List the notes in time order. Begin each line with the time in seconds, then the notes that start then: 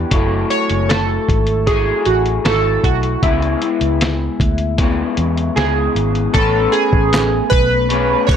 Already playing: E3 B3 D4 G4
0.11 F#1 F#3 A3 E4, kick, closed hi-hat
0.50 C#5, closed hi-hat
0.70 F#1, closed hi-hat
0.89 A4, snare, closed hi-hat
1.29 G#1, kick, closed hi-hat
1.47 closed hi-hat
1.66 F#3 A3 E4 G#4, kick, snare, closed hi-hat
2.05 A1 F#4, closed hi-hat
2.26 closed hi-hat
2.44 G#1 F#3 A3 E4 A4, snare, closed hi-hat
2.84 B1 F#4, kick, closed hi-hat
3.03 closed hi-hat
3.23 C#2 C#3 G#3 B3 E4, kick, closed hi-hat
3.42 closed hi-hat
3.62 G#3 B3 E4, closed hi-hat
3.81 C#2, closed hi-hat
4.01 snare, closed hi-hat
4.40 D2, kick, closed hi-hat
4.58 closed hi-hat
4.78 C#3 G#3 B3 E4, kick, snare, closed hi-hat
5.17 E2, closed hi-hat
5.37 closed hi-hat
5.56 C#2 C#3 G#3 B3 E4 G#4, snare, closed hi-hat
5.95 G#1, closed hi-hat
6.15 closed hi-hat
6.33 A1 A3 B3 C#4 A4, kick, closed hi-hat
6.37 B4
6.72 G#4, closed hi-hat
6.93 A1, kick
7.13 snare, clap, closed hi-hat
7.50 B1 B4, kick, closed hi-hat
7.89 A3 C#4 G#4 B4, closed hi-hat
8.27 C#2 C#5, kick, clap, closed hi-hat